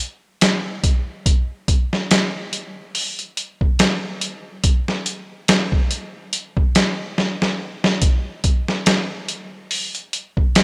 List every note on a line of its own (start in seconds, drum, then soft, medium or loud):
0.41 snare loud
0.41 closed hi-hat medium
0.84 kick loud
0.84 closed hi-hat medium
1.26 kick loud
1.26 closed hi-hat medium
1.68 kick medium
1.68 closed hi-hat medium
1.93 snare medium
2.11 snare loud
2.11 closed hi-hat medium
2.53 closed hi-hat medium
2.95 open hi-hat medium
3.19 closed hi-hat soft
3.37 closed hi-hat medium
3.61 kick medium
3.79 snare loud
3.79 closed hi-hat medium
4.21 closed hi-hat medium
4.64 kick loud
4.64 closed hi-hat medium
4.88 snare soft
5.06 closed hi-hat medium
5.48 snare loud
5.48 closed hi-hat medium
5.72 kick medium
5.91 closed hi-hat medium
6.33 closed hi-hat medium
6.57 kick medium
6.75 snare loud
6.75 closed hi-hat medium
7.18 snare medium
7.42 snare medium
7.84 snare medium
8.02 kick loud
8.02 closed hi-hat medium
8.44 kick loud
8.44 closed hi-hat medium
8.68 snare soft
8.86 snare loud
8.86 closed hi-hat medium
9.28 closed hi-hat medium
9.71 open hi-hat medium
9.95 closed hi-hat soft
10.13 closed hi-hat medium
10.37 kick medium
10.55 snare loud
10.55 closed hi-hat medium